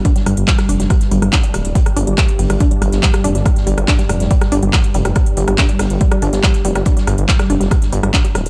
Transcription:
<<
  \new Staff \with { instrumentName = "Synth arpeggio sound" } { \clef bass \time 4/4 \key c \dorian \tempo 4 = 141 d'16 g16 g16 r16 g16 g16 d'16 g16 g16 r16 g16 g16 d'16 g16 g16 r16 | g16 g16 d'16 g16 g16 r16 g16 g16 d'16 g16 g16 r16 g16 g16 d'16 g16 | g16 r16 g16 g16 d'16 g16 g16 r16 g16 g16 d'16 g16 g16 r16 g16 g16 | g16 r16 g16 g16 d'16 g16 g16 r16 g16 g16 d'16 g16 g16 r16 g16 g16 |
d'16 g16 g16 r16 g16 g16 d'16 g16 g16 r16 g16 g16 d'16 g16 g16 r16 | }
  \new Staff \with { instrumentName = "Synth drone" } { \clef bass \time 4/4 \key c \dorian <g, g>1~ | <g, g>1~ | <g, g>1~ | <g, g>1~ |
<g, g>1 | }
  \new Staff \with { instrumentName = "Detuned saw bass" } { \clef bass \time 4/4 \key c \dorian r8 g,,16 g,,16 r8 f,,16 f,,16 r8 g,,16 g,,16 r8 d,,16 d,,16 | r8 g,,16 g,,16 r8 g,,16 g,,16 r8 g,,16 g,,16 r8 f,,16 g,,16 | r8 g,,16 g,,16 r8 f,,16 f,,16 r8 g,,16 g,,16 r8 f,,16 f,,16 | r8 g,,16 g,,16 r8 g,,16 g,,16 r8 g,,16 g,,16 r8 f,,16 g,,16 |
r8 g,,16 g,,16 r8 f,,16 f,,16 r8 g,,16 g,,16 r8 d,,16 d,,16 | }
  \new DrumStaff \with { instrumentName = "Drums" } \drummode { \time 4/4 <hh bd>16 <hh sn>16 <hh hho ss>16 hh16 <hc hh bd sn>16 <hh ss sn>16 <hh hho>16 <hh sn>16 <hh bd ss>16 <hh sn>16 <hh hho>16 <hh ss>16 <hc hh bd sn>16 hh16 <hh hho ss>16 hh16 | <hh bd>16 <hh ss>16 <hh hho>16 hh16 <hc hh bd ss sn>16 hh16 hho16 <hh ss>16 <hh bd>16 hh16 <hh hho ss>16 <hh sn>16 <hc hh bd sn>16 <hh ss sn>16 <hh hho>16 <hh sn>16 | <hh bd ss>16 <hh sn>16 <hh hho>16 <hh ss>16 <hc hh bd sn>16 <hh sn>16 <hh hho ss>16 <hh sn>16 <hh bd>16 <hh ss sn>16 <hh hho>16 hh16 <hc hh bd ss sn>16 hh16 <hh hho>16 <hh ss>16 | <hh bd ss>16 hh16 <hh hho>16 <hh ss>16 <hc hh bd sn>16 hh16 <hho ss sn>16 hh16 <hh bd>16 <hh ss>16 <hh hho>16 <hh sn>16 <hc hh bd ss sn>16 <hh sn>16 <hh hho>16 <hh ss sn>16 |
<hh bd>16 <hh sn>16 <hh hho ss>16 hh16 <hc hh bd sn>16 <hh ss sn>16 <hh hho>16 <hh sn>16 <hh bd ss>16 <hh sn>16 <hh hho>16 <hh ss>16 <hc hh bd sn>16 hh16 <hh hho ss>16 hh16 | }
>>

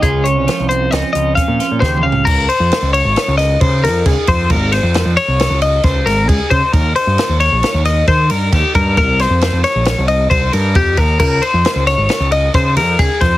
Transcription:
<<
  \new Staff \with { instrumentName = "Clean electric guitar" } { \time 5/4 \key des \lydian \tempo 4 = 134 aes'8 des''4 c''8 ees''8 ees''8 f''4 c''8 f''8 | bes'8 c''4 des''4 ees''8 c''8 bes'8 aes'8 c''8 | bes'8 c''4 des''4 ees''8 c''8 bes'8 aes'8 c''8 | bes'8 c''4 des''4 ees''8 c''8 bes'8 g'8 bes'8 |
bes'8 c''4 des''4 ees''8 c''8 bes'8 g'8 bes'8 | bes'8 c''4 des''4 ees''8 c''8 bes'8 aes'8 c''8 | }
  \new Staff \with { instrumentName = "Clean electric guitar" } { \time 5/4 \key des \lydian << { f'8 des'4 c'8 des'8 f'8 des'8 f'8 g'8 des'8 | r1 r4 | r1 r4 | r1 r4 |
r1 r4 | r1 r4 | } \\ { des4 f2. des4 | r1 r4 | r1 r4 | r1 r4 |
r1 r4 | r1 r4 | } >> }
  \new Staff \with { instrumentName = "Picked electric bass" } { \clef bass \time 5/4 \key des \lydian des,8. c,16 r16 c,8. des,16 r16 des,8 r16 bes,16 r16 bes,16 ees,8 des,8 | des,8 r16 f,16 r16 des,8 aes,,16 r16 des,8. des8 f,8 des,16 r16 f,8 | aes,,8. f,8 f,16 r16 c,8 des,8. des,8 aes,,8 des,16 r16 des16 r16 | ees,8 r16 g,16 r16 ees,8 bes,,16 r16 ees,8. ees8 g,8 ees,16 r16 g,8 |
c,8. f,8 f,16 r16 bes,,8 c,8. c,8 g,8 f,8 ees,8 | des,8 r16 f,16 r16 des,8 aes,,16 r16 des,8. des8 f,8 des,16 r16 f,8 | }
  \new DrumStaff \with { instrumentName = "Drums" } \drummode { \time 5/4 <hh bd>8 hh8 <hh sn>8 hh8 <hh sn>8 hh8 <hh bd sn>8 <hh sn>8 \tuplet 3/2 { <bd sn>8 toml8 tomfh8 } | <cymc bd>8 cymr8 <cymr sn>8 cymr8 <cymr sn>8 <cymr sn>8 <bd cymr>8 <cymr sn>8 <bd cymr sn>8 <bd cymr>8 | <bd cymr>8 <cymr sn>8 <cymr sn>8 cymr8 <cymr sn>8 cymr8 <bd cymr sn>8 <cymr sn>8 <bd cymr>8 <bd cymr>8 | <bd cymr>8 cymr8 <cymr sn>8 cymr8 <cymr sn>8 <cymr sn>8 <bd cymr>8 cymr8 <bd cymr sn>8 <bd cymr>8 |
<bd cymr>8 <cymr sn>8 <cymr sn>8 <cymr sn>8 <cymr sn>8 cymr8 <bd cymr>8 cymr8 <bd cymr>8 <bd cymr>8 | <cymc bd>8 cymr8 <cymr sn>8 <cymr sn>8 <cymr sn>8 cymr8 <bd cymr sn>8 <cymr sn>8 <bd cymr sn>8 <bd cymr sn>8 | }
>>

